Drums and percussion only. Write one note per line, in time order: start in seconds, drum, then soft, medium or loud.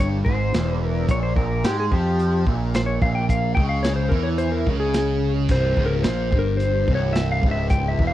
0.26 kick loud
0.54 snare loud
0.54 closed hi-hat medium
1.08 kick loud
1.08 closed hi-hat medium
1.36 kick loud
1.64 snare loud
1.64 closed hi-hat medium
1.92 kick loud
2.19 closed hi-hat medium
2.47 kick loud
2.74 snare loud
2.74 closed hi-hat medium
3.02 kick loud
3.29 kick loud
3.29 closed hi-hat medium
3.57 kick loud
3.84 snare loud
3.84 closed hi-hat medium
4.12 kick loud
4.38 closed hi-hat medium
4.67 kick loud
4.94 snare loud
4.94 closed hi-hat medium
5.49 kick loud
5.49 crash medium
5.77 kick loud
6.04 snare loud
6.04 closed hi-hat medium
6.32 kick loud
6.60 closed hi-hat medium
6.88 kick loud
7.15 snare loud
7.15 closed hi-hat medium
7.43 kick loud
7.70 kick loud
7.70 closed hi-hat medium
7.99 kick loud